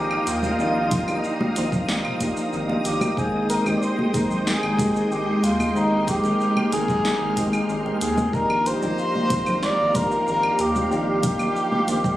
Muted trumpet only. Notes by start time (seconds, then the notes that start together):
Already playing: G4
0.29 F4
2.86 G4
3.18 G#4
3.50 A#4
3.76 D5
3.83 C5
4.47 G#4
5.12 G4
5.44 F4
5.76 D#4
6.09 G4
6.73 G#4
8.02 G#4
8.34 A#4
8.67 C5
9.64 D5
9.96 A#4
10.28 A#4
10.61 G4
10.93 G4